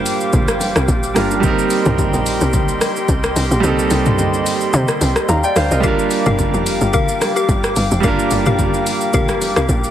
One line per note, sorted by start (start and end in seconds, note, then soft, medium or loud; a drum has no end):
0.00 1.10 G3 medium
0.00 1.11 A#3 medium
0.00 1.12 D4 medium
0.00 1.13 F4 medium
0.00 1.39 G4 medium
0.00 1.14 C5 medium
0.00 1.40 F5 medium
0.00 9.91 G5 medium
0.00 1.39 D6 medium
0.06 open hi-hat medium
0.06 shaker loud
0.21 shaker soft
0.33 0.50 A#1 loud
0.33 kick loud
0.33 low conga medium
0.33 shaker medium
0.48 0.74 F1 medium
0.48 cross-stick medium
0.48 shaker medium
0.61 open hi-hat medium
0.61 low bongo medium
0.61 shaker medium
0.76 0.88 C2 medium
0.76 cross-stick loud
0.76 shaker medium
0.88 1.14 A#1 loud
0.88 kick loud
0.88 high bongo medium
0.88 shaker medium
1.03 shaker medium
1.14 1.42 G1 medium
1.14 1.38 G3 medium
1.14 1.40 A#3 medium
1.14 1.43 D4 medium
1.14 1.44 F4 medium
1.14 1.44 A#4 medium
1.14 cross-stick loud
1.14 open hi-hat medium
1.14 low bongo medium
1.14 shaker medium
1.31 high bongo medium
1.31 shaker medium
1.40 3.58 G3 medium
1.40 3.59 A#3 medium
1.40 3.60 C4 medium
1.40 5.80 G4 medium
1.40 5.80 D#5 medium
1.40 5.80 C6 medium
1.40 kick loud
1.40 low conga medium
1.40 shaker medium
1.46 3.61 D#4 medium
1.46 3.62 A#4 medium
1.59 shaker medium
1.70 open hi-hat soft
1.70 shaker medium
1.86 2.12 C2 loud
1.86 mid tom loud
1.86 low bongo medium
1.86 shaker medium
1.98 kick medium
1.98 high bongo medium
1.98 low conga medium
1.98 shaker medium
2.14 2.39 A#1 medium
2.14 shaker soft
2.26 open hi-hat medium
2.26 shaker loud
2.41 2.79 C2 medium
2.41 shaker soft
2.53 kick loud
2.53 low conga medium
2.53 shaker medium
2.68 shaker medium
2.81 cross-stick loud
2.81 open hi-hat medium
2.81 low bongo medium
2.81 shaker medium
2.96 shaker medium
3.08 3.34 C2 loud
3.08 kick loud
3.08 high bongo medium
3.08 shaker medium
3.24 cross-stick loud
3.24 shaker medium
3.36 3.50 C2 medium
3.36 open hi-hat medium
3.36 low bongo medium
3.36 shaker medium
3.51 3.63 A#1 loud
3.51 high bongo soft
3.51 shaker medium
3.60 3.89 C2 loud
3.60 5.78 G3 medium
3.60 5.79 A#3 medium
3.60 5.80 C4 medium
3.60 low conga medium
3.60 shaker medium
3.66 5.81 D#4 medium
3.66 5.27 A4 medium
3.79 shaker medium
3.91 4.43 C2 loud
3.91 open hi-hat medium
3.91 shaker medium
4.06 mid tom loud
4.06 low bongo medium
4.06 shaker medium
4.19 high bongo medium
4.19 low conga medium
4.19 shaker medium
4.34 shaker medium
4.46 open hi-hat medium
4.46 shaker loud
4.61 shaker soft
4.73 4.88 C3 loud
4.73 low conga medium
4.73 shaker medium
4.88 cross-stick medium
4.88 shaker medium
5.01 5.15 C2 medium
5.01 open hi-hat medium
5.01 low bongo medium
5.01 shaker medium
5.16 cross-stick loud
5.16 shaker medium
5.29 5.43 D#2 loud
5.29 5.44 F5 medium
5.29 5.43 A#5 medium
5.29 high bongo medium
5.29 shaker medium
5.44 5.56 D5 medium
5.44 5.56 G5 medium
5.44 shaker medium
5.56 5.70 D2 medium
5.56 5.71 C5 medium
5.56 5.71 F5 medium
5.56 cross-stick loud
5.56 open hi-hat medium
5.56 low bongo medium
5.56 shaker medium
5.71 5.83 C2 loud
5.71 5.86 A#4 medium
5.71 5.98 D#5 medium
5.71 high bongo medium
5.71 shaker medium
5.80 7.98 G3 medium
5.80 7.99 A#3 medium
5.80 8.00 D4 medium
5.80 6.23 G4 loud
5.80 9.91 G4 medium
5.80 6.23 A#4 medium
5.80 9.91 F5 medium
5.80 6.23 F5 loud
5.80 9.91 D6 medium
5.80 kick loud
5.80 low conga medium
5.80 shaker medium
5.86 8.01 F4 medium
5.86 8.02 A#4 medium
5.99 shaker medium
6.11 open hi-hat soft
6.11 shaker medium
6.26 6.52 G1 loud
6.26 6.38 G4 medium
6.26 6.38 A#4 medium
6.26 6.39 F5 medium
6.26 mid tom loud
6.26 low bongo medium
6.26 shaker soft
6.39 kick medium
6.39 high bongo medium
6.39 low conga medium
6.39 shaker medium
6.54 6.80 F1 medium
6.54 shaker soft
6.66 open hi-hat medium
6.66 shaker loud
6.81 7.19 G1 loud
6.81 shaker soft
6.93 7.33 G4 loud
6.93 7.33 A#4 medium
6.93 7.33 F5 loud
6.93 kick loud
6.93 low conga medium
6.93 shaker medium
7.09 shaker medium
7.21 cross-stick medium
7.21 open hi-hat soft
7.21 low bongo medium
7.21 shaker medium
7.36 7.48 G4 medium
7.36 7.49 A#4 medium
7.36 7.49 F5 medium
7.36 shaker medium
7.49 7.75 G1 loud
7.49 kick loud
7.49 high bongo medium
7.49 shaker medium
7.64 cross-stick loud
7.64 shaker medium
7.76 7.91 G1 medium
7.76 open hi-hat medium
7.76 low bongo medium
7.76 shaker medium
7.91 8.03 F1 medium
7.91 high bongo soft
7.91 shaker medium
8.00 8.30 G1 loud
8.00 9.91 G3 medium
8.00 9.91 A#3 medium
8.00 9.91 D4 medium
8.00 8.43 G4 loud
8.00 8.43 A#4 medium
8.00 8.43 F5 loud
8.00 kick loud
8.00 low conga medium
8.00 shaker medium
8.06 9.91 F4 medium
8.06 9.91 A#4 medium
8.19 shaker medium
8.31 8.83 G1 medium
8.31 open hi-hat soft
8.31 shaker medium
8.46 8.59 G4 medium
8.46 8.59 A#4 medium
8.46 8.59 F5 medium
8.46 mid tom loud
8.46 low bongo medium
8.46 shaker soft
8.59 kick medium
8.59 high bongo medium
8.59 low conga medium
8.59 shaker medium
8.74 shaker soft
8.87 open hi-hat medium
8.87 shaker loud
9.01 shaker soft
9.13 9.31 A#1 loud
9.13 9.53 G4 medium
9.13 9.53 A#4 medium
9.13 9.53 F5 loud
9.13 kick loud
9.13 low conga medium
9.13 shaker medium
9.29 9.55 F1 medium
9.29 cross-stick medium
9.29 shaker medium
9.41 open hi-hat medium
9.41 low bongo medium
9.41 shaker medium
9.56 9.68 C2 medium
9.56 9.69 G4 medium
9.56 9.69 A#4 medium
9.56 9.69 F5 medium
9.56 cross-stick loud
9.56 shaker medium
9.69 9.91 A#1 loud
9.69 kick loud
9.69 high bongo medium
9.69 shaker medium
9.84 shaker medium